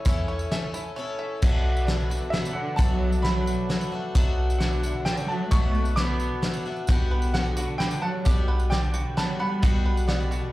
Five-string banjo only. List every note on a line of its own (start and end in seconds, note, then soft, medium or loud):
0.00 0.27 C#5 medium
0.06 0.73 E4 medium
0.28 0.95 C#5 medium
0.52 1.18 E5 medium
0.74 1.42 E4 medium
0.96 1.42 C#5 medium
1.19 1.42 E5 medium
6.89 7.55 F#4 medium
7.11 7.79 B4 medium
7.34 8.01 F#5 medium
7.57 8.48 F#4 medium
7.80 8.47 B4 medium
8.02 8.94 F#5 medium
8.25 9.17 G4 medium
8.48 9.16 B4 medium
8.71 9.63 D5 loud
8.94 9.62 F#4 medium
9.17 9.84 B4 loud
9.40 10.07 F#5 medium
9.63 10.30 F#4 loud
9.85 10.52 B4 medium
10.09 10.52 F#5 loud
10.31 10.52 F#4 medium